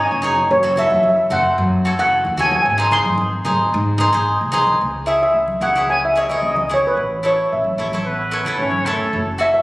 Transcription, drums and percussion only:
0, 0, Header, 1, 2, 480
1, 0, Start_track
1, 0, Tempo, 539084
1, 446, Time_signature, 4, 2, 24, 8
1, 8567, End_track
2, 0, Start_track
2, 0, Title_t, "Drums"
2, 675, Note_on_c, 9, 64, 75
2, 764, Note_off_c, 9, 64, 0
2, 804, Note_on_c, 9, 63, 92
2, 893, Note_off_c, 9, 63, 0
2, 919, Note_on_c, 9, 63, 84
2, 1008, Note_off_c, 9, 63, 0
2, 1160, Note_on_c, 9, 63, 73
2, 1160, Note_on_c, 9, 64, 77
2, 1249, Note_off_c, 9, 63, 0
2, 1249, Note_off_c, 9, 64, 0
2, 2003, Note_on_c, 9, 63, 73
2, 2092, Note_off_c, 9, 63, 0
2, 2114, Note_on_c, 9, 64, 80
2, 2203, Note_off_c, 9, 64, 0
2, 2239, Note_on_c, 9, 63, 76
2, 2328, Note_off_c, 9, 63, 0
2, 2593, Note_on_c, 9, 64, 77
2, 2682, Note_off_c, 9, 64, 0
2, 2717, Note_on_c, 9, 63, 78
2, 2806, Note_off_c, 9, 63, 0
2, 2828, Note_on_c, 9, 63, 72
2, 2917, Note_off_c, 9, 63, 0
2, 3073, Note_on_c, 9, 63, 70
2, 3073, Note_on_c, 9, 64, 76
2, 3162, Note_off_c, 9, 63, 0
2, 3162, Note_off_c, 9, 64, 0
2, 3546, Note_on_c, 9, 64, 71
2, 3635, Note_off_c, 9, 64, 0
2, 4028, Note_on_c, 9, 64, 75
2, 4117, Note_off_c, 9, 64, 0
2, 4158, Note_on_c, 9, 63, 69
2, 4247, Note_off_c, 9, 63, 0
2, 4877, Note_on_c, 9, 63, 65
2, 4966, Note_off_c, 9, 63, 0
2, 4997, Note_on_c, 9, 64, 62
2, 5086, Note_off_c, 9, 64, 0
2, 5121, Note_on_c, 9, 63, 67
2, 5210, Note_off_c, 9, 63, 0
2, 5601, Note_on_c, 9, 64, 58
2, 5690, Note_off_c, 9, 64, 0
2, 5844, Note_on_c, 9, 63, 58
2, 5933, Note_off_c, 9, 63, 0
2, 5959, Note_on_c, 9, 64, 62
2, 6048, Note_off_c, 9, 64, 0
2, 6804, Note_on_c, 9, 63, 61
2, 6893, Note_off_c, 9, 63, 0
2, 7046, Note_on_c, 9, 63, 69
2, 7135, Note_off_c, 9, 63, 0
2, 7524, Note_on_c, 9, 64, 61
2, 7613, Note_off_c, 9, 64, 0
2, 7758, Note_on_c, 9, 63, 59
2, 7847, Note_off_c, 9, 63, 0
2, 7882, Note_on_c, 9, 64, 65
2, 7971, Note_off_c, 9, 64, 0
2, 8567, End_track
0, 0, End_of_file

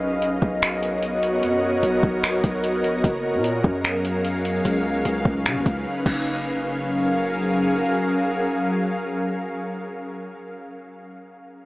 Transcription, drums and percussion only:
0, 0, Header, 1, 2, 480
1, 0, Start_track
1, 0, Key_signature, 6, "major"
1, 0, Tempo, 402685
1, 1702, Time_signature, 4, 2, 24, 8
1, 13893, End_track
2, 0, Start_track
2, 0, Title_t, "Drums"
2, 263, Note_on_c, 9, 42, 72
2, 382, Note_off_c, 9, 42, 0
2, 501, Note_on_c, 9, 36, 96
2, 621, Note_off_c, 9, 36, 0
2, 743, Note_on_c, 9, 42, 77
2, 748, Note_on_c, 9, 26, 121
2, 862, Note_off_c, 9, 42, 0
2, 867, Note_off_c, 9, 26, 0
2, 986, Note_on_c, 9, 42, 61
2, 1105, Note_off_c, 9, 42, 0
2, 1222, Note_on_c, 9, 42, 72
2, 1341, Note_off_c, 9, 42, 0
2, 1466, Note_on_c, 9, 42, 73
2, 1585, Note_off_c, 9, 42, 0
2, 1704, Note_on_c, 9, 42, 74
2, 1823, Note_off_c, 9, 42, 0
2, 2183, Note_on_c, 9, 42, 74
2, 2302, Note_off_c, 9, 42, 0
2, 2422, Note_on_c, 9, 36, 102
2, 2541, Note_off_c, 9, 36, 0
2, 2664, Note_on_c, 9, 42, 77
2, 2669, Note_on_c, 9, 26, 121
2, 2783, Note_off_c, 9, 42, 0
2, 2788, Note_off_c, 9, 26, 0
2, 2906, Note_on_c, 9, 42, 60
2, 2907, Note_on_c, 9, 36, 100
2, 3025, Note_off_c, 9, 42, 0
2, 3026, Note_off_c, 9, 36, 0
2, 3144, Note_on_c, 9, 42, 76
2, 3263, Note_off_c, 9, 42, 0
2, 3388, Note_on_c, 9, 42, 72
2, 3507, Note_off_c, 9, 42, 0
2, 3624, Note_on_c, 9, 36, 120
2, 3625, Note_on_c, 9, 42, 73
2, 3743, Note_off_c, 9, 36, 0
2, 3744, Note_off_c, 9, 42, 0
2, 4103, Note_on_c, 9, 42, 73
2, 4222, Note_off_c, 9, 42, 0
2, 4341, Note_on_c, 9, 36, 101
2, 4461, Note_off_c, 9, 36, 0
2, 4583, Note_on_c, 9, 42, 76
2, 4588, Note_on_c, 9, 26, 118
2, 4702, Note_off_c, 9, 42, 0
2, 4707, Note_off_c, 9, 26, 0
2, 4825, Note_on_c, 9, 42, 60
2, 4944, Note_off_c, 9, 42, 0
2, 5061, Note_on_c, 9, 42, 73
2, 5180, Note_off_c, 9, 42, 0
2, 5306, Note_on_c, 9, 42, 75
2, 5425, Note_off_c, 9, 42, 0
2, 5543, Note_on_c, 9, 42, 74
2, 5662, Note_off_c, 9, 42, 0
2, 6022, Note_on_c, 9, 42, 75
2, 6141, Note_off_c, 9, 42, 0
2, 6261, Note_on_c, 9, 36, 101
2, 6381, Note_off_c, 9, 36, 0
2, 6504, Note_on_c, 9, 42, 81
2, 6509, Note_on_c, 9, 26, 122
2, 6623, Note_off_c, 9, 42, 0
2, 6628, Note_off_c, 9, 26, 0
2, 6745, Note_on_c, 9, 42, 59
2, 6746, Note_on_c, 9, 36, 100
2, 6864, Note_off_c, 9, 42, 0
2, 6865, Note_off_c, 9, 36, 0
2, 7222, Note_on_c, 9, 49, 90
2, 7223, Note_on_c, 9, 36, 107
2, 7342, Note_off_c, 9, 36, 0
2, 7342, Note_off_c, 9, 49, 0
2, 13893, End_track
0, 0, End_of_file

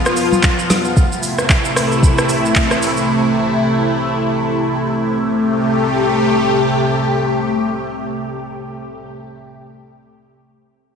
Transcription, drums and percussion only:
0, 0, Header, 1, 2, 480
1, 0, Start_track
1, 0, Key_signature, 0, "minor"
1, 0, Tempo, 530973
1, 871, Time_signature, 4, 2, 24, 8
1, 9902, End_track
2, 0, Start_track
2, 0, Title_t, "Drums"
2, 51, Note_on_c, 9, 82, 55
2, 55, Note_on_c, 9, 37, 98
2, 142, Note_off_c, 9, 82, 0
2, 146, Note_off_c, 9, 37, 0
2, 150, Note_on_c, 9, 46, 53
2, 150, Note_on_c, 9, 82, 86
2, 241, Note_off_c, 9, 46, 0
2, 241, Note_off_c, 9, 82, 0
2, 291, Note_on_c, 9, 63, 83
2, 299, Note_on_c, 9, 82, 56
2, 381, Note_off_c, 9, 63, 0
2, 389, Note_off_c, 9, 82, 0
2, 389, Note_on_c, 9, 82, 81
2, 391, Note_on_c, 9, 39, 105
2, 392, Note_on_c, 9, 36, 93
2, 479, Note_off_c, 9, 82, 0
2, 482, Note_off_c, 9, 39, 0
2, 483, Note_off_c, 9, 36, 0
2, 533, Note_on_c, 9, 82, 51
2, 624, Note_off_c, 9, 82, 0
2, 633, Note_on_c, 9, 63, 81
2, 634, Note_on_c, 9, 38, 62
2, 636, Note_on_c, 9, 46, 60
2, 636, Note_on_c, 9, 82, 100
2, 723, Note_off_c, 9, 63, 0
2, 724, Note_off_c, 9, 38, 0
2, 727, Note_off_c, 9, 46, 0
2, 727, Note_off_c, 9, 82, 0
2, 766, Note_on_c, 9, 82, 54
2, 857, Note_off_c, 9, 82, 0
2, 872, Note_on_c, 9, 36, 127
2, 873, Note_on_c, 9, 82, 73
2, 963, Note_off_c, 9, 36, 0
2, 964, Note_off_c, 9, 82, 0
2, 1015, Note_on_c, 9, 82, 51
2, 1106, Note_off_c, 9, 82, 0
2, 1111, Note_on_c, 9, 46, 56
2, 1111, Note_on_c, 9, 82, 96
2, 1201, Note_off_c, 9, 46, 0
2, 1201, Note_off_c, 9, 82, 0
2, 1251, Note_on_c, 9, 37, 85
2, 1251, Note_on_c, 9, 82, 55
2, 1342, Note_off_c, 9, 37, 0
2, 1342, Note_off_c, 9, 82, 0
2, 1351, Note_on_c, 9, 36, 109
2, 1354, Note_on_c, 9, 39, 91
2, 1356, Note_on_c, 9, 82, 77
2, 1441, Note_off_c, 9, 36, 0
2, 1444, Note_off_c, 9, 39, 0
2, 1446, Note_off_c, 9, 82, 0
2, 1491, Note_on_c, 9, 82, 62
2, 1582, Note_off_c, 9, 82, 0
2, 1595, Note_on_c, 9, 37, 100
2, 1599, Note_on_c, 9, 46, 63
2, 1599, Note_on_c, 9, 82, 103
2, 1685, Note_off_c, 9, 37, 0
2, 1690, Note_off_c, 9, 46, 0
2, 1690, Note_off_c, 9, 82, 0
2, 1733, Note_on_c, 9, 82, 48
2, 1824, Note_off_c, 9, 82, 0
2, 1832, Note_on_c, 9, 36, 121
2, 1840, Note_on_c, 9, 82, 79
2, 1922, Note_off_c, 9, 36, 0
2, 1930, Note_off_c, 9, 82, 0
2, 1971, Note_on_c, 9, 82, 55
2, 1975, Note_on_c, 9, 37, 100
2, 2061, Note_off_c, 9, 82, 0
2, 2065, Note_off_c, 9, 37, 0
2, 2071, Note_on_c, 9, 46, 53
2, 2071, Note_on_c, 9, 82, 88
2, 2161, Note_off_c, 9, 46, 0
2, 2161, Note_off_c, 9, 82, 0
2, 2220, Note_on_c, 9, 82, 53
2, 2307, Note_off_c, 9, 82, 0
2, 2307, Note_on_c, 9, 82, 82
2, 2310, Note_on_c, 9, 39, 112
2, 2311, Note_on_c, 9, 36, 97
2, 2398, Note_off_c, 9, 82, 0
2, 2401, Note_off_c, 9, 36, 0
2, 2401, Note_off_c, 9, 39, 0
2, 2451, Note_on_c, 9, 37, 97
2, 2452, Note_on_c, 9, 82, 51
2, 2541, Note_off_c, 9, 37, 0
2, 2543, Note_off_c, 9, 82, 0
2, 2554, Note_on_c, 9, 46, 60
2, 2554, Note_on_c, 9, 82, 102
2, 2644, Note_off_c, 9, 46, 0
2, 2644, Note_off_c, 9, 82, 0
2, 2683, Note_on_c, 9, 82, 57
2, 2773, Note_off_c, 9, 82, 0
2, 9902, End_track
0, 0, End_of_file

